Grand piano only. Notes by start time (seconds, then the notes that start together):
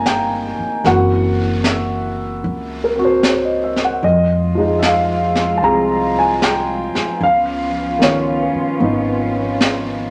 Already playing: D#3 A#3 C4 D#4 F4 F5 G#5 A#5
0.06 G5
0.85 E3 A#3 C4 F#4 F#5
1.67 E5
2.84 A#4
2.96 C4 F#4
3.05 C5
3.24 C#5
3.45 D#5
3.64 E5
3.85 F#5
4.04 D#5
4.55 F3 G#3 D#4
4.79 E5
4.86 F5
5.58 A5
5.62 C4 F4 G#4 A#5
6.19 G#5
6.44 G5
7.23 F5
7.99 D#3 B3 C#4
8.03 F4 C#5
8.80 B3 D#4